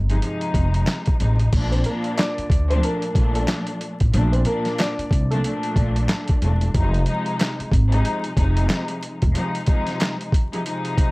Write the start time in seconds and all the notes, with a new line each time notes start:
Already playing: G1
0.09 C3 F3 G#3 D#4, closed hi-hat
0.22 C3 F3 G#3 D#4, closed hi-hat
0.41 closed hi-hat
0.54 F1, kick, closed hi-hat
0.74 closed hi-hat
0.87 snare, clap, closed hi-hat
1.06 kick, closed hi-hat
1.20 A1 C3 F3 G#3 D#4, closed hi-hat
1.39 closed hi-hat
1.53 A#1 A#2 F3 A3 D4, kick, closed hi-hat, crash
1.72 C4 C5, closed hi-hat
1.84 A#2 F3 A#3 D4 A#4, closed hi-hat
2.04 closed hi-hat
2.17 D4 D5, snare, clap, closed hi-hat
2.38 muted upright bass stroke, closed hi-hat
2.50 D2, kick, closed hi-hat
2.70 A#2 F3 A3 C4 D4 C5, closed hi-hat
2.83 A#3 A#4, closed hi-hat
3.02 closed hi-hat
3.14 A#1 A#2 F3 A3 D4, kick, closed hi-hat
3.35 A3 A4, closed hi-hat
3.48 snare, clap, closed hi-hat
3.67 closed hi-hat
3.81 closed hi-hat
4.00 A1, kick, closed hi-hat
4.14 A#1 A#2 F3 A3 D4, closed hi-hat
4.32 C4 C5, closed hi-hat
4.45 A#2 F3 A#3 D4 A#4, closed hi-hat
4.65 snare, closed hi-hat
4.78 D4 D5, snare, clap, closed hi-hat
4.99 muted upright bass stroke, closed hi-hat
5.11 C2, kick, closed hi-hat
5.31 A#2 F3 A3 D4 A4, closed hi-hat
5.44 A#2 F3 A3 D4, closed hi-hat
5.63 closed hi-hat
5.76 A#1, kick, closed hi-hat
5.96 closed hi-hat
6.09 snare, clap, closed hi-hat
6.28 kick, closed hi-hat
6.42 E1 A#2 F3 A3 D4, closed hi-hat
6.61 closed hi-hat
6.74 F1 C3 F3 G#3 D#4, kick, closed hi-hat
6.94 closed hi-hat
7.06 C3 F3 G#3 D#4, closed hi-hat
7.26 closed hi-hat
7.39 snare, clap, closed hi-hat
7.59 muted upright bass stroke, closed hi-hat
7.72 G#1, kick, closed hi-hat
7.90 C3 F3 G#3 D#4, closed hi-hat
8.05 closed hi-hat
8.24 closed hi-hat
8.37 F1 C3 F3 G#3 D#4, kick, closed hi-hat
8.57 closed hi-hat
8.70 snare, clap, closed hi-hat
8.88 closed hi-hat
9.03 closed hi-hat
9.22 E1, kick, closed hi-hat
9.35 C3 F3 G#3 D#4, closed hi-hat
9.55 closed hi-hat
9.66 C3 F3 G#3 D#4, kick, closed hi-hat
9.87 snare, closed hi-hat
10.00 snare, clap, closed hi-hat
10.21 closed hi-hat
10.32 kick, closed hi-hat
10.53 C3 F3 G#3 D#4, closed hi-hat
10.65 C3 F3 G#3 D#4, closed hi-hat
10.85 closed hi-hat
10.98 kick, closed hi-hat